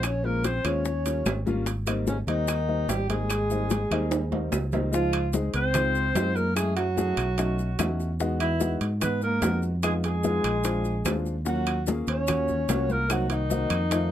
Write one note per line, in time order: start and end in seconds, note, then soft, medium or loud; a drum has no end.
0.00 0.59 A#1 medium
0.00 high bongo medium
0.00 high timbale medium
0.00 maracas medium
0.04 0.26 C#4 medium
0.04 0.27 C#5 loud
0.04 high conga soft
0.04 claves medium
0.23 0.52 G#3 medium
0.23 0.46 A#3 medium
0.23 0.52 C4 medium
0.23 0.53 C#4 medium
0.23 0.53 F4 medium
0.23 0.47 A#4 medium
0.23 high bongo soft
0.23 high conga soft
0.44 0.66 C4 medium
0.44 0.67 C5 medium
0.44 high bongo medium
0.44 high conga medium
0.44 high timbale medium
0.44 low timbale medium
0.44 maracas medium
0.64 1.22 D#2 medium
0.64 0.85 G#3 medium
0.64 0.85 C4 medium
0.64 1.46 C#4 medium
0.64 0.86 C#4 medium
0.64 0.86 F4 medium
0.64 1.47 C#5 loud
0.64 high timbale medium
0.64 claves medium
0.64 maracas soft
0.85 high bongo medium
0.85 high conga soft
0.85 maracas medium
1.06 1.34 G3 medium
1.06 1.34 A#3 medium
1.06 1.35 C#4 medium
1.06 1.35 F4 medium
1.06 high bongo soft
1.06 high conga soft
1.06 high timbale medium
1.06 maracas medium
1.26 2.22 G#1 medium
1.26 high bongo medium
1.26 low bongo medium
1.26 high conga medium
1.26 high timbale medium
1.26 low timbale medium
1.26 claves medium
1.26 maracas medium
1.46 1.67 G3 loud
1.46 1.67 A#3 medium
1.46 1.67 C#4 medium
1.46 1.67 F4 loud
1.46 high bongo soft
1.46 high conga medium
1.46 maracas soft
1.66 high bongo medium
1.66 high timbale medium
1.66 maracas medium
1.87 2.15 G3 medium
1.87 2.15 A#3 medium
1.87 2.16 C4 medium
1.87 2.16 D#4 medium
1.87 high bongo soft
1.87 high conga soft
1.87 high timbale medium
1.87 claves medium
1.87 maracas medium
2.07 2.17 C#3 medium
2.07 2.17 C#4 medium
2.07 high bongo medium
2.07 high conga medium
2.07 low timbale medium
2.07 maracas medium
2.27 2.85 D#2 medium
2.27 2.90 D#3 medium
2.27 2.56 G3 medium
2.27 2.56 A#3 medium
2.27 2.57 C4 medium
2.27 2.91 D#4 medium
2.27 2.57 D#4 medium
2.27 high timbale medium
2.27 maracas soft
2.48 high bongo medium
2.48 high conga soft
2.48 high timbale medium
2.48 claves medium
2.48 maracas medium
2.68 2.97 G3 medium
2.68 2.97 A#3 medium
2.68 2.97 C4 medium
2.68 2.97 D#4 medium
2.68 high bongo soft
2.68 high conga soft
2.88 3.85 G#1 medium
2.88 3.09 G3 medium
2.88 3.09 G4 loud
2.88 high bongo medium
2.88 low bongo medium
2.88 high conga soft
2.88 high timbale medium
2.88 low timbale medium
2.88 maracas medium
3.09 3.38 G3 medium
3.09 4.49 G#3 medium
3.09 3.38 A#3 medium
3.09 3.39 C4 medium
3.09 3.38 D#4 medium
3.09 4.49 G#4 loud
3.09 high bongo soft
3.09 high conga medium
3.09 high timbale medium
3.09 maracas soft
3.30 high bongo medium
3.30 high conga soft
3.30 high timbale medium
3.30 claves medium
3.30 maracas medium
3.50 3.79 G3 medium
3.50 3.79 A#3 medium
3.50 3.79 C4 medium
3.50 3.80 D#4 medium
3.50 high bongo soft
3.50 high conga soft
3.50 maracas soft
3.70 high bongo medium
3.70 high conga medium
3.70 high timbale medium
3.70 low timbale medium
3.70 maracas medium
3.91 4.48 D#2 medium
3.91 4.20 G3 medium
3.91 4.20 A#3 medium
3.91 4.20 C4 medium
3.91 4.20 D#4 loud
3.91 high timbale medium
3.91 claves medium
3.91 maracas soft
4.11 high bongo medium
4.11 high conga soft
4.11 high timbale medium
4.11 maracas medium
4.31 4.60 G3 medium
4.31 4.60 A#3 medium
4.31 4.61 C4 medium
4.31 4.61 D#4 medium
4.31 high bongo soft
4.31 high conga medium
4.31 high timbale medium
4.52 5.49 C#2 medium
4.52 high bongo medium
4.52 low bongo medium
4.52 high conga medium
4.52 low timbale medium
4.52 claves medium
4.52 maracas medium
4.72 4.93 G3 medium
4.72 4.93 A#3 medium
4.72 4.91 C4 medium
4.72 4.91 D#4 medium
4.72 high bongo soft
4.72 low conga medium
4.72 low timbale medium
4.72 maracas soft
4.92 5.32 F3 medium
4.92 5.21 G#3 medium
4.92 5.21 C4 medium
4.92 5.22 D#4 medium
4.92 5.22 F4 medium
4.92 5.31 F4 medium
4.92 high bongo medium
4.92 high conga soft
4.92 maracas medium
5.13 high bongo soft
5.13 high conga soft
5.13 high timbale loud
5.13 claves medium
5.13 maracas soft
5.33 5.63 G#3 medium
5.33 5.63 C4 medium
5.33 5.63 D#4 medium
5.33 5.63 G#4 medium
5.33 high bongo medium
5.33 high conga loud
5.33 low timbale medium
5.33 maracas medium
5.54 6.12 C#2 medium
5.54 6.38 C4 loud
5.54 6.37 C5 loud
5.54 high conga soft
5.54 high timbale medium
5.54 maracas soft
5.74 6.03 G#3 medium
5.74 6.03 C4 medium
5.74 6.04 D#4 medium
5.74 6.04 F4 medium
5.74 high bongo medium
5.74 high conga soft
5.74 low conga medium
5.74 high timbale medium
5.74 claves medium
5.74 maracas medium
5.95 high bongo soft
5.95 high conga soft
5.95 maracas soft
6.15 7.12 F#2 medium
6.15 6.44 G#3 medium
6.15 6.44 C4 medium
6.15 6.45 D#4 medium
6.15 6.45 F4 medium
6.15 high bongo medium
6.15 low bongo medium
6.15 high conga medium
6.15 high timbale medium
6.15 low timbale medium
6.15 maracas medium
6.36 6.56 A#3 medium
6.36 6.55 A#4 medium
6.36 high bongo soft
6.36 maracas soft
6.56 6.76 G#3 medium
6.56 6.85 A3 medium
6.56 6.85 C#4 medium
6.56 6.85 E4 medium
6.56 6.75 G#4 loud
6.56 6.85 G#4 medium
6.56 high bongo medium
6.56 high conga soft
6.56 high timbale medium
6.56 claves medium
6.56 maracas medium
6.76 7.96 F#3 medium
6.76 7.95 F#4 medium
6.76 high bongo soft
6.76 high conga soft
6.76 high timbale medium
6.76 maracas soft
6.96 7.26 A3 medium
6.96 7.26 C#4 medium
6.96 7.26 E4 medium
6.96 7.26 G#4 loud
6.96 high bongo medium
6.96 high conga medium
6.96 low timbale medium
6.96 maracas medium
7.17 7.75 B1 loud
7.17 high conga soft
7.17 high timbale medium
7.17 claves medium
7.17 maracas soft
7.37 7.67 A3 medium
7.37 7.67 C#4 medium
7.37 7.67 D#4 medium
7.37 7.67 F#4 medium
7.37 high bongo medium
7.37 high conga soft
7.37 high timbale medium
7.37 maracas medium
7.59 high bongo soft
7.59 high conga soft
7.59 maracas soft
7.79 8.75 E2 medium
7.79 8.08 A3 medium
7.79 8.08 C#4 medium
7.79 8.08 D#4 medium
7.79 8.08 F#4 medium
7.79 high bongo medium
7.79 low bongo medium
7.79 high conga medium
7.79 high timbale medium
7.79 low timbale medium
7.79 claves medium
7.79 maracas medium
8.00 high bongo soft
8.00 maracas soft
8.20 8.49 G#3 medium
8.20 8.49 B3 medium
8.20 8.49 D#4 medium
8.20 8.49 F#4 loud
8.20 high bongo medium
8.20 high conga soft
8.20 maracas medium
8.40 8.79 E3 medium
8.40 8.78 E4 medium
8.40 high bongo soft
8.40 high conga soft
8.40 high timbale medium
8.40 claves medium
8.40 maracas soft
8.60 8.89 G#3 medium
8.60 8.89 B3 medium
8.60 8.90 D#4 medium
8.60 8.90 F#4 medium
8.60 high bongo medium
8.60 high conga loud
8.60 low timbale medium
8.60 maracas medium
8.81 9.39 G#2 medium
8.81 high conga soft
8.81 high timbale medium
8.81 maracas soft
9.00 9.30 G#3 medium
9.00 9.30 B3 medium
9.00 9.21 B3 medium
9.00 9.30 D#4 medium
9.00 9.30 G#4 medium
9.00 9.22 B4 medium
9.00 high bongo medium
9.00 high conga soft
9.00 low conga medium
9.00 high timbale medium
9.00 claves medium
9.00 maracas medium
9.22 9.61 A#3 medium
9.22 9.61 A#4 medium
9.22 high bongo soft
9.22 high conga soft
9.22 maracas soft
9.41 10.38 F2 loud
9.41 9.70 G#3 medium
9.41 9.71 B3 medium
9.41 9.71 D#4 medium
9.41 9.71 F#4 medium
9.41 high bongo medium
9.41 low bongo medium
9.41 high conga medium
9.41 high timbale medium
9.41 low timbale medium
9.41 maracas medium
9.63 high bongo soft
9.63 maracas soft
9.83 10.12 G#3 medium
9.83 9.94 G#3 medium
9.83 10.12 B3 medium
9.83 10.12 D#4 medium
9.83 10.13 F4 medium
9.83 9.93 G#4 medium
9.83 high bongo medium
9.83 high conga soft
9.83 high timbale medium
9.83 claves medium
9.83 maracas medium
10.04 11.23 G#3 loud
10.04 11.23 G#4 loud
10.04 high bongo soft
10.04 high conga soft
10.04 high timbale medium
10.04 maracas soft
10.24 10.53 G#3 medium
10.24 10.53 B3 medium
10.24 10.53 D#4 medium
10.24 10.53 F4 medium
10.24 high bongo medium
10.24 high conga medium
10.24 low timbale medium
10.24 maracas medium
10.44 11.02 A#1 medium
10.44 high conga soft
10.44 high timbale medium
10.44 claves medium
10.44 maracas soft
10.64 10.93 G#3 medium
10.64 10.93 C4 medium
10.64 10.94 D4 medium
10.64 10.94 F4 medium
10.64 high bongo medium
10.64 high conga soft
10.64 high timbale medium
10.64 maracas medium
10.85 high bongo soft
10.85 high conga soft
10.85 maracas soft
11.05 12.01 D#2 medium
11.05 11.34 G#3 medium
11.05 11.34 C4 medium
11.05 11.35 D4 medium
11.05 11.35 F4 medium
11.05 high bongo medium
11.05 low bongo medium
11.05 high conga medium
11.05 high timbale medium
11.05 low timbale medium
11.05 claves medium
11.05 maracas medium
11.26 high bongo soft
11.26 maracas soft
11.45 11.85 F#3 medium
11.45 11.75 A#3 medium
11.45 11.75 C#4 medium
11.45 11.75 F4 medium
11.45 11.75 F#4 medium
11.45 11.86 F#4 medium
11.45 high bongo medium
11.45 high conga soft
11.45 maracas medium
11.67 high bongo soft
11.67 high conga soft
11.67 high timbale medium
11.67 claves medium
11.67 maracas soft
11.87 12.16 A#3 medium
11.87 12.16 C#4 medium
11.87 12.16 F4 medium
11.87 12.17 G#4 medium
11.87 high bongo medium
11.87 high conga loud
11.87 low timbale medium
11.87 maracas medium
12.07 12.65 D#2 medium
12.07 12.92 C#4 loud
12.07 12.93 C#5 loud
12.07 high conga soft
12.07 high timbale medium
12.07 maracas soft
12.27 12.57 A#3 medium
12.27 12.57 C#4 medium
12.27 12.57 F4 medium
12.27 12.57 F#4 medium
12.27 high bongo medium
12.27 high conga soft
12.27 low conga medium
12.27 high timbale medium
12.27 claves medium
12.27 maracas medium
12.48 high bongo soft
12.48 high conga soft
12.48 low conga medium
12.48 maracas soft
12.69 13.65 C2 medium
12.69 12.98 A#3 medium
12.69 12.98 C#4 medium
12.69 12.98 F4 medium
12.69 12.98 F#4 medium
12.69 high bongo medium
12.69 low bongo medium
12.69 high conga medium
12.69 high timbale medium
12.69 low timbale medium
12.69 maracas medium
12.89 13.11 A#3 medium
12.89 13.13 A#4 loud
12.89 high bongo soft
12.89 high conga medium
12.89 maracas soft
13.10 13.33 F#3 medium
13.10 13.39 A#3 medium
13.10 13.39 C4 medium
13.10 13.39 D#4 medium
13.10 13.39 F#4 medium
13.10 13.34 F#4 medium
13.10 high bongo medium
13.10 high conga soft
13.10 high timbale medium
13.10 claves medium
13.10 maracas medium
13.30 14.12 D#3 medium
13.30 14.12 D#4 medium
13.30 high bongo soft
13.30 high conga soft
13.30 high timbale medium
13.30 maracas soft
13.50 13.79 A#3 medium
13.50 13.79 C4 medium
13.50 13.80 D#4 medium
13.50 13.80 F#4 medium
13.50 high bongo medium
13.50 high conga medium
13.50 low timbale medium
13.50 maracas medium
13.70 14.12 F2 medium
13.70 high conga soft
13.70 high timbale loud
13.70 claves medium
13.70 maracas soft
13.90 14.12 A3 medium
13.90 14.12 C4 medium
13.90 14.12 D#4 medium
13.90 14.12 F4 loud
13.90 high bongo medium
13.90 high conga soft
13.90 high timbale medium
13.90 maracas medium